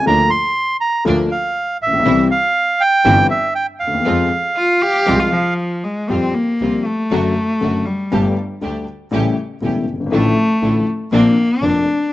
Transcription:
0.06 upright piano D2 D3 F3 A#3 F4, double bass D2, string section F3 A#3 D4, bandoneon A#5
0.30 bandoneon C6
0.81 bandoneon A#5
1.05 upright piano D2 D3 F3 A#3 F4, double bass D2, string section F3 A#3 D4
1.31 bandoneon F5
1.81 double bass A#1, bandoneon E5
1.87 upright piano A1
1.93 upright piano A#1
2.00 upright piano B1
2.05 double bass C2, upright piano C2 C3 E3 G3 C4 G4, string section G3 C4 E4
2.31 bandoneon F5
2.80 bandoneon G5
3.04 upright piano G1 G2 E3 G3 C4 G4, double bass G1, string section G3 C4 E4
3.30 bandoneon E5
3.55 bandoneon G5
3.80 double bass D#2, bandoneon F5
3.87 upright piano D2
3.94 upright piano D#2
4.00 upright piano E2
4.05 double bass F2, upright piano F2 F3 G#3 C4 G#4, string section G#3 C4 F4
4.56 cello F4
4.81 cello G4
5.06 upright piano C2 C3 F3 G#3 C4 G#4, double bass C2, string section G#3 C4 F4
5.20 cello F4
5.32 cello F3
5.83 cello G#3
6.09 double bass F2, upright piano F2 F3 G3 C4 G4, string section G3 C4 F4, cello C4
6.34 cello A#3
6.60 double bass C2, upright piano C2 C3 F3 G3 C4 G4, string section G3 C4 F4
6.85 cello A3
7.11 double bass F#1, upright piano F#2 D3 F#3 A3 F#4, string section A3 D4 F#4
7.61 double bass F#1, upright piano F#2 D3 F#3 A3 F#4, string section A3 D4 F#4
7.86 cello G3
8.11 upright piano G1 G2 D3 G3 A3 G4, double bass G1, string section A3 D4 G4
8.61 upright piano D2 D3 G3 A3 G4, double bass D2, string section A3 D4 G4
9.11 double bass A1, upright piano A1 A2 C#3 G3 A3 E4, string section A3 C#4 G4
9.61 double bass E1, upright piano E1 E2 C#3 G3 A3 E4, string section A3 C#4 G4
9.87 double bass G1
9.93 upright piano F#1
10.00 upright piano G1
10.06 upright piano G#1
10.12 upright piano A1 A2 D3 F3 A3 E4, double bass A1, string section F3 D4 E4, cello A3
10.62 double bass A1, upright piano A1 A2 D3 F3 A3 E4, string section F3 D4 E4
11.11 double bass A#1, upright piano A#1 A#2 C3 F3 A#3 D4, string section A#3 C4 D4, cello A#3
11.61 double bass F1, upright piano F1 F2 C3 F3 A#3 D4, string section A#3 C4 D4, cello D4

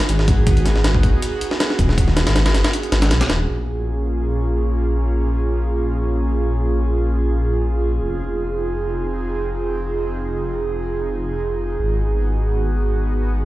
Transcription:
Already playing: analog synth pad B3 D#4 F#4 G#4
0.00 snare, closed hi-hat
0.09 detuned saw bass G#1, closed hi-hat
0.19 snare
0.28 kick, closed hi-hat
0.47 kick, closed hi-hat
0.57 closed hi-hat
0.66 snare, closed hi-hat
0.76 detuned saw bass G#1, snare
0.84 snare, closed hi-hat
0.94 kick
1.03 detuned saw bass F#1, kick, closed hi-hat
1.22 closed hi-hat
1.41 closed hi-hat
1.51 snare
1.60 snare, closed hi-hat
1.70 snare
1.79 detuned saw bass D#1, kick, closed hi-hat
1.89 snare
1.98 kick, closed hi-hat
2.08 snare
2.17 snare, closed hi-hat
2.27 detuned saw bass G#1, snare, closed hi-hat
2.36 snare, closed hi-hat
2.46 snare, closed hi-hat
2.54 detuned saw bass F#1, snare, closed hi-hat
2.64 snare, closed hi-hat
2.73 closed hi-hat
2.83 closed hi-hat
2.92 detuned saw bass G#1, snare, closed hi-hat
3.02 snare, closed hi-hat
3.11 detuned saw bass B1, snare, closed hi-hat
3.21 snare, closed hi-hat
3.30 detuned saw bass D#1, snare, closed hi-hat
3.49 detuned saw bass A#1, analog synth pad A#3 C#4 F4 G#4
8.01 detuned saw bass F1, analog synth pad C4 D#4
11.79 detuned saw bass G#1, analog synth pad B3 F#4

